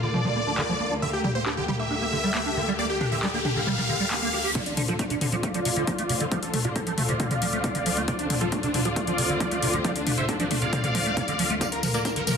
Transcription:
Already playing: D2 D3 A#3 F4
0.03 D3 D5
0.14 F3, mid tom
0.25 F3, mid tom
0.36 A#3
0.47 D4
0.58 D3, clap
0.69 F3
0.80 A#3
0.91 D4
1.02 D3 G4 E5, riser
1.13 G4
1.24 G3 G4, mid tom
1.35 A#3 C5
1.46 D4 G4, clap
1.57 D3 G4
1.68 G3 G4, mid tom
1.79 A#3 E5
1.91 D4
2.02 A#3
2.13 D3
2.24 G3
2.35 A#3, clap
2.46 D4
2.57 D3
2.68 G3
2.79 A#3 D5
2.90 G4
3.01 D4 G4, mid tom
3.12 D3 E5
3.23 G3 G4, clap
3.34 A#3 G4
3.45 D4 G4, mid tom
3.56 D3 F5
3.67 G3, mid tom
3.78 G3, mid tom
3.89 D3
4.00 G3
4.11 A#3, clap
4.22 A#3
4.33 G4
4.44 G4
4.55 D2 C3 D3 C4 F4 D5, kick, closed hi-hat
4.66 D4, closed hi-hat
4.77 D3 D4, open hi-hat, mid tom
4.88 F3 F4 A4, closed hi-hat
4.99 A3 D4, kick, closed hi-hat
5.10 C3 D4, closed hi-hat
5.21 D3 D4, open hi-hat, mid tom
5.32 F3 F4 D5, closed hi-hat
5.43 A3, kick, closed hi-hat
5.54 F3, closed hi-hat
5.65 C3, open hi-hat
5.76 D3, closed hi-hat
5.87 F3, kick, closed hi-hat
5.99 A3, closed hi-hat
6.09 C3, open hi-hat
6.20 D3, closed hi-hat
6.32 F3 D5 F5, kick, closed hi-hat
6.43 A4, closed hi-hat
6.54 A3 A4, open hi-hat, mid tom
6.65 C3 F4 D5, closed hi-hat
6.76 D3 A4, kick, closed hi-hat
6.87 F3 A4, closed hi-hat
6.98 A3 A4, open hi-hat, mid tom
7.09 C3 D5 F5, closed hi-hat
7.20 D3, kick, closed hi-hat, mid tom
7.31 D3, closed hi-hat, mid tom
7.42 F3, open hi-hat
7.53 A3, closed hi-hat
7.64 C3, kick, closed hi-hat
7.75 D3, closed hi-hat
7.86 F3, open hi-hat
7.97 A3, closed hi-hat
8.08 C3 F4 D5, kick, closed hi-hat
8.19 D4, closed hi-hat
8.30 D3 D4, open hi-hat, mid tom
8.41 F3 F4 A4, closed hi-hat
8.52 A3 D4, kick, closed hi-hat
8.63 C3 D4, closed hi-hat
8.74 D3 D4, open hi-hat, mid tom
8.85 F3 F4 D5, closed hi-hat
8.96 A3, kick, closed hi-hat
9.07 F3, closed hi-hat
9.18 C3, open hi-hat
9.29 D3, closed hi-hat
9.40 F3, kick, closed hi-hat
9.51 A3, closed hi-hat
9.62 C3, open hi-hat
9.74 D3, closed hi-hat
9.85 F3 F4 D5, kick, closed hi-hat
9.96 D4, closed hi-hat
10.06 A3 D4, open hi-hat, mid tom
10.18 C3 C5 E5, closed hi-hat
10.29 D3 D4, kick, closed hi-hat
10.40 F3 D4, closed hi-hat
10.51 A3 D4, open hi-hat, mid tom
10.62 C3 D5 F5, closed hi-hat
10.73 D3, kick, closed hi-hat, mid tom
10.84 D3, closed hi-hat, mid tom
10.95 F3, kick, open hi-hat
11.06 A3, closed hi-hat
11.17 C3, kick, closed hi-hat
11.28 D3, closed hi-hat
11.39 F3, open hi-hat
11.50 A3, closed hi-hat
11.61 D3 A#3 D5 F5, kick, closed hi-hat, tambourine, riser
11.72 A#4, closed hi-hat
11.83 F3 A#4, open hi-hat, mid tom, tambourine
11.94 A#3 A#4 D5, closed hi-hat, tambourine
12.05 D4 A#4, kick, closed hi-hat, tambourine
12.16 D3 A#4, closed hi-hat
12.27 F3 A#4, open hi-hat, mid tom, tambourine

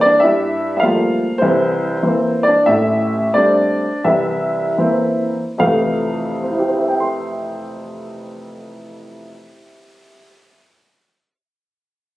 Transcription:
0.01 D5
0.06 D4
0.20 G2 E5
0.24 E4
0.77 E5 F5
0.82 F3 G3 A3 A#3 F4
1.38 C2 E3 C5
1.42 C4
2.03 E3 A#3 C4
2.43 D5
2.48 D4
2.66 A1 A2 E5
2.71 E4
3.34 G3 A3 C4 D4 D5
4.04 C2 E3 E4 E5
4.78 E3 A#3 C4
5.58 F2 C3 E3 A3 F5
6.43 C4
6.51 E4
6.59 G4
6.68 C5
6.78 E5
6.88 G5
7.00 C6

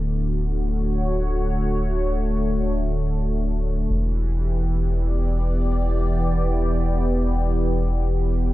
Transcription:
Already playing: D1 D3 A3 B3
0.14 F#4
0.63 C#5
3.89 E1 E3
4.17 G4
4.34 B3
4.87 D5

